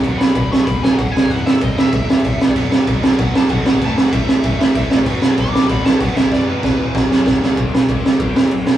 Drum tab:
CC |x---x---x---x---|x---x---x---x---|x---x---x---x---|x---x---x---x---|
RD |----------------|----------------|----------------|----------------|
SD |--o---o---o---o-|--o---o---o---o-|--o---o---o---o-|--o---o---o---o-|
BD |o---o---o---o--o|o---o---o---o--o|o---o---o---o--o|o---o---o---o--o|

CC |x---x---x---x---|----------------|----------------|
RD |----------------|----------------|x---x---x---x---|
SD |--o---o---o---o-|o---o---o-o-o-o-|--o---o---o---o-|
BD |o---o---o---o--o|o---o---o---o---|o---o---o-------|